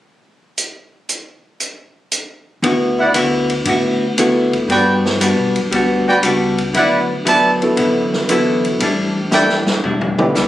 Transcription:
0.58 closed hi-hat
1.09 closed hi-hat
1.60 closed hi-hat
2.12 closed hi-hat
2.62 upright bass D2, hollow-body jazz guitar D3 B3 E4 F#4, ride
2.99 trumpet section E4 B4 D5 F#5
3.14 hollow-body jazz guitar D3 B3 E4 F#4, hi-hat pedal, ride
3.50 ride
3.65 upright bass A2, hollow-body jazz guitar D3 B3 E4, ride
3.69 hollow-body jazz guitar F#4
4.17 hollow-body jazz guitar D3 B3 E4 F#4, grand piano B3 E4 F#4 A4, hi-hat pedal, ride
4.53 kick, ride
4.68 upright bass G2, hollow-body jazz guitar G3 B3 D4 F#4, trumpet section F#4 B4 D5 G5, ride
5.06 snare
5.21 hollow-body jazz guitar G3 B3 D4 F#4, hi-hat pedal, ride
5.37 upright bass B2
5.54 upright bass F#2, ride
5.71 upright bass D2, hollow-body jazz guitar G3 B3 D4 F#4, ride
6.08 trumpet section F#4 B4 D5 G5
6.23 upright bass C#2, hollow-body jazz guitar G3 B3 D4 F#4, hi-hat pedal, ride
6.58 ride
6.74 upright bass D2, hollow-body jazz guitar D3 F#3 B3 E4, trumpet section E4 B4 D5 F#5, ride
7.25 hollow-body jazz guitar D3 F#3 B3 E4, trumpet section E4 B4 D5 A5, hi-hat pedal, ride
7.62 grand piano B3 E4 F#4 A4, ride
7.77 upright bass A1, hollow-body jazz guitar D3 F#3 B3 E4, ride
8.13 snare
8.29 hollow-body jazz guitar D3 F#3 B3 E4, grand piano B3 E4 F#4 A4, hi-hat pedal, ride
8.65 ride
8.80 upright bass A1, hollow-body jazz guitar A2 G3 D4 E4, ride
9.31 hollow-body jazz guitar A2 G3 D4 E4, trumpet section E4 A4 D5 G5, snare, hi-hat pedal
9.49 snare
9.67 muted upright bass stroke, snare
9.82 upright bass E1, hollow-body jazz guitar A2 G3 D4 E4, floor tom
10.01 floor tom
10.18 grand piano B3 D4 E4 G4, mid tom
10.35 upright bass C#2, hollow-body jazz guitar A2 G3 D4 E4, snare, hi-hat pedal

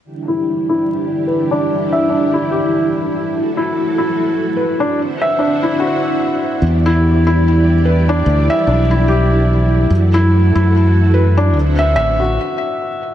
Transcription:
0.04 string machine D4 E4 G4
0.28 felt piano E4
0.69 felt piano E4
1.27 felt piano B4
1.51 felt piano D4
1.93 felt piano E5
2.10 felt piano D4
2.34 felt piano E4
2.51 felt piano G4
3.33 string machine F#4 A4
3.57 felt piano E4
3.98 felt piano E4
4.56 felt piano B4
4.80 felt piano D4
4.97 string machine D4 C5 E5 F#5
5.22 felt piano E5
5.39 felt piano D4
5.63 felt piano E4
5.80 felt piano F#4
6.62 fingered electric bass E2, string machine E4 G4 D5
6.86 felt piano E4
7.27 felt piano E4
7.85 felt piano B4
8.09 felt piano D4
8.26 fingered electric bass D2
8.50 felt piano E5
8.67 fingered electric bass B1, felt piano D4
8.91 felt piano E4
9.08 felt piano G4
9.90 fingered electric bass F#2, string machine F#4 A4
10.14 felt piano E4
10.55 fingered electric bass F#2, felt piano E4
11.14 felt piano B4
11.37 felt piano D4
11.55 fingered electric bass D2, string machine D4 C5 E5 F#5
11.79 felt piano E5
11.96 fingered electric bass A1, felt piano E5
12.20 felt piano F#4

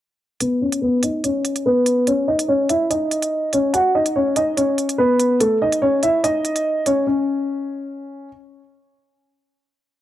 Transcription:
0.40 grand piano B3 B4, closed hi-hat
0.61 grand piano C#4 C#5
0.72 closed hi-hat
0.82 grand piano B3 B4
1.03 grand piano D#4 D#5, closed hi-hat
1.24 grand piano C#4 C#5, closed hi-hat
1.45 closed hi-hat
1.56 closed hi-hat
1.66 grand piano B3 B4
1.86 closed hi-hat
2.07 grand piano C#4 C#5, closed hi-hat
2.28 grand piano D#4 D#5
2.39 closed hi-hat
2.48 grand piano C#4 C#5
2.69 grand piano E4 E5, closed hi-hat
2.90 grand piano D#4 D#5, closed hi-hat
3.11 closed hi-hat
3.22 closed hi-hat
3.53 grand piano C#4 C#5, closed hi-hat
3.74 grand piano F#4 F#5, closed hi-hat
3.95 grand piano D#4 D#5
4.06 closed hi-hat
4.16 grand piano C#4 C#5
4.36 grand piano D#4 D#5, closed hi-hat
4.57 grand piano C#4 C#5, closed hi-hat
4.78 closed hi-hat
4.89 closed hi-hat
4.98 grand piano B3 B4
5.20 closed hi-hat
5.40 grand piano A3 A4, closed hi-hat
5.62 grand piano D#4 D#5
5.72 closed hi-hat
5.82 grand piano C#4 C#5
6.03 grand piano E4 E5, closed hi-hat
6.24 grand piano D#4 D#5, closed hi-hat
6.45 closed hi-hat
6.56 closed hi-hat
6.86 grand piano C#4 C#5, closed hi-hat
7.07 grand piano C#4

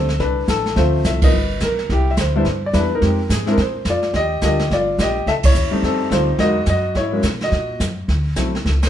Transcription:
Already playing: upright bass D2, grand piano A4 C5
0.09 snare
0.19 upright bass C2, grand piano D4 B4, brush sweep, kick, snare
0.48 upright bass A1, grand piano A4, kick, snare, hi-hat pedal
0.66 snare
0.75 upright bass D2, grand piano F3 A3 C4 C5 E5, brush sweep, kick, snare
0.79 grand piano F4
1.04 upright bass C2, grand piano E5, kick, snare, hi-hat pedal
1.22 grand piano F3 A#3 B3 D#4 B4 D#5, kick, ride
1.33 upright bass G1, brush sweep
1.60 upright bass B1, grand piano A#4, kick, snare, hi-hat pedal
1.79 snare
1.89 upright bass C2, grand piano E4 G4, brush sweep, kick, snare
2.11 grand piano E5
2.17 upright bass D2, grand piano C5, kick, snare, hi-hat pedal
2.36 grand piano G3 B3 D4 E4 C5
2.45 upright bass G2, brush sweep, kick, snare
2.66 grand piano D5
2.73 upright bass E2, grand piano G3 B3 D4 E4 B4, kick, snare, hi-hat pedal
2.95 grand piano D#4 A#4
3.00 upright bass F2, grand piano G#3 C4 D#4 G4, brush sweep, kick, snare
3.29 upright bass G#2, grand piano G#4, kick, snare, hi-hat pedal
3.46 grand piano G#3 C4 D4 E4, snare
3.52 grand piano A#4
3.57 upright bass A#2, grand piano G#4 C5, brush sweep, kick, snare
3.85 upright bass F2, kick, snare, hi-hat pedal
3.90 grand piano F4 D5
4.03 snare
4.13 upright bass D#2, grand piano G4 D#5, brush sweep, kick, snare
4.41 upright bass D2, grand piano G3 A#3 D4 F4 G4 D#5, kick, snare, hi-hat pedal
4.59 snare
4.70 upright bass G1, grand piano D5, brush sweep, kick, snare
4.74 grand piano F4
4.98 upright bass A#1, grand piano G4 D#5, kick, snare, hi-hat pedal
5.26 upright bass C#2, grand piano A4 E5, brush sweep, kick, snare
5.43 grand piano E4 C#5, kick, ride
5.54 upright bass D#2, hi-hat pedal
5.71 grand piano G3 A3 C4 D#4, muted upright bass stroke
5.82 upright bass F2, grand piano C4 A4, brush sweep, kick, snare
6.11 upright bass D2, grand piano G3 A3 C4 F4 C5, kick, snare, hi-hat pedal
6.15 grand piano D#4
6.38 upright bass E2, grand piano F#3 G#3 A#3 D#4 D#5, brush sweep, kick, snare
6.43 grand piano F#4
6.66 upright bass F#2, grand piano D#5, kick, snare, hi-hat pedal
6.71 grand piano F#4
6.95 upright bass G#2, grand piano E4 C#5, brush sweep, kick, snare
7.12 grand piano F#3 G#3 A#3 C#4
7.23 upright bass B2, kick, snare, hi-hat pedal
7.41 grand piano D#5, snare
7.45 grand piano F#4
7.52 upright bass A#2, brush sweep, kick, snare
7.80 upright bass F#2, kick, snare, hi-hat pedal
8.08 upright bass D2, brush sweep, kick, snare
8.36 upright bass B1, grand piano F#3 A3 C4 E4, kick, snare, hi-hat pedal
8.55 snare
8.65 upright bass C#2, brush sweep, kick, snare
8.82 snare, ride

